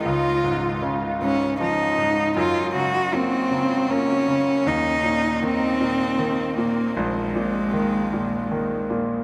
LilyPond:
<<
  \new Staff \with { instrumentName = "Cello" } { \time 6/8 \key ees \dorian \tempo 4. = 52 f'4 r8 des'8 ees'4 | f'8 ges'8 c'4 des'4 | ees'4 c'4. bes8 | aes2~ aes8 r8 | }
  \new Staff \with { instrumentName = "Grand piano" } { \clef bass \time 6/8 \key ees \dorian des,8 aes,8 des8 aes,8 f8 aes,8 | ges,8 des8 bes8 des8 bes8 des8 | ees,8 bes,8 ees8 bes,8 ees8 bes,8 | bes,,8 bes,8 ees8 bes,8 ees8 bes,8 | }
>>